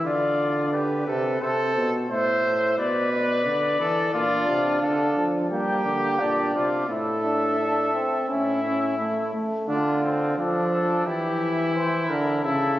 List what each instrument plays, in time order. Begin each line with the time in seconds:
0.05 bass trombone D3, trumpet F4, cornet D5
0.73 trumpet G4, cornet B4
1.07 bass trombone C3, trumpet A4
1.41 bass trombone C3, trumpet A4, cornet C5
1.76 bass trombone B2
2.10 bass trombone A2, trumpet C5, cornet E5
2.44 bass trombone A2
2.78 bass trombone B2, trumpet B4, cornet D5
3.12 cornet D5
3.46 bass trombone D3
3.80 bass trombone E3, trumpet A4
4.14 bass trombone A#2, trombone D4, trumpet F4, cornet D5
4.48 bass trombone C3
4.82 bass trombone D3, trumpet A4, cornet F5
5.16 bass trombone F3
5.51 bass trombone G3, trombone A#3, trumpet G4, cornet G5
5.85 bass trombone D3
6.19 bass trombone A#2, trombone D4, cornet D5
6.54 bass trombone C3, trumpet F4
6.89 bass trombone A2, trombone E4, trumpet A4, cornet E5
7.24 trombone D4
7.59 trombone D4
7.94 trombone C4
8.29 bass trombone A2, trombone C#4, trumpet E4, cornet E5
8.64 trombone C#4
8.99 trombone A3
9.34 trombone A3
9.68 bass trombone D3, trumpet D4, cornet F4
10.04 trumpet C4
10.38 bass trombone F3, trumpet D4, cornet A4
10.73 cornet A4
11.06 bass trombone E3, trumpet E4, cornet G4
11.75 cornet C5
12.09 bass trombone D3, cornet A#4
12.43 bass trombone C#3, trumpet E4, cornet A4